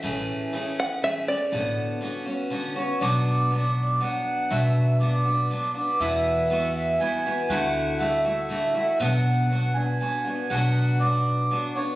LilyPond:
<<
  \new Staff \with { instrumentName = "Accordion" } { \time 3/4 \key b \dorian \tempo 4 = 120 r2. | r2 r8 cis''8 | d''4. d''8 fis''4 | e''4 d''4. d''8 |
e''4. e''8 gis''4 | fis''4 e''4. e''8 | fis''4. gis''8 gis''4 | fis''4 d''4. cis''8 | }
  \new Staff \with { instrumentName = "Five-string banjo" } { \time 3/4 \key b \dorian e''4 r8 fis''8 e''8 d''8~ | d''2~ d''8 r8 | r2. | r2. |
r2. | r2. | r2. | r2. | }
  \new Staff \with { instrumentName = "Steel-string acoustic guitar" } { \time 3/4 \key b \dorian <a, e a cis' gis'>4 <e a cis' gis'>4 <e a cis' gis'>8 <a cis' gis'>8 | <a, d b fis'>4 <d b cis' fis'>8 <b cis' fis'>8 <d b cis' fis'>8 <b cis' fis'>8 | <b, fis b d' fis'>4 <fis b d' fis'>4 <fis b d' fis'>4 | <b, fis b d' fis'>4 <fis b d' fis'>8 <b d' fis'>8 <fis b d' fis'>8 <b d' fis'>8 |
<e, b, e b e' fis'>4 <e b e' fis'>4 <e b e' fis'>8 <e b e' fis'>8 | <d a e' fis'>4 <d a e' fis'>8 <a e' fis'>8 <d a e' fis'>8 <a e' fis'>8 | <b, fis b d' fis'>4 <fis b d' fis'>8 <b d' fis'>8 <fis b d' fis'>8 <b d' fis'>8 | <b, fis b d' fis'>4 <fis b d' fis'>4 <fis b d' fis'>8 <b d' fis'>8 | }
  \new Staff \with { instrumentName = "Upright bass" } { \clef bass \time 3/4 \key b \dorian a,,8 r2 r8 | a,,8 r2 r8 | b,,2 r4 | b,,2 r4 |
e,2 r4 | d,2 r4 | b,,2 r4 | b,,2 r4 | }
>>